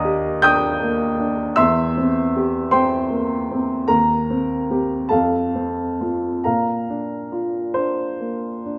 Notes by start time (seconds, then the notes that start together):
Already playing: D#2 D4 D#5 A#5 D#6
0.05 G4
0.42 D4 G5 D#6 G6
0.82 A#3
1.19 D4
1.56 E2 E5 C6 E6
1.97 C4
2.36 G4
2.71 C4 C5 G5 C6
3.10 A#3
3.51 C4
3.88 D#2 A#4 A#5
4.30 C4
4.70 C4 G4
5.09 F2 A4 F5 A5
5.55 C4
6.01 C4 F4
6.44 A#2 A#4 F5 A#5
6.90 D4
7.32 F4
7.74 D4 C5
8.20 A#3
8.66 D4